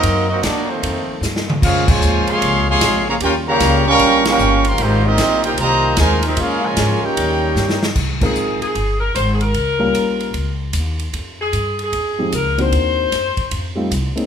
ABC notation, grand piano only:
X:1
M:4/4
L:1/8
Q:"Swing" 1/4=151
K:Ab
V:1 name="Grand piano"
z8 | z8 | z8 | z8 |
z8 | z [A,CEFB]3 z4 | z [G,B,DFB]3 z4 | z4 z [F,A,CEG] z [E,B,C=D_G]- |
[E,B,C=D_G]2 z3 [=G,=A,CEF] z [_A,B,C_DE] |]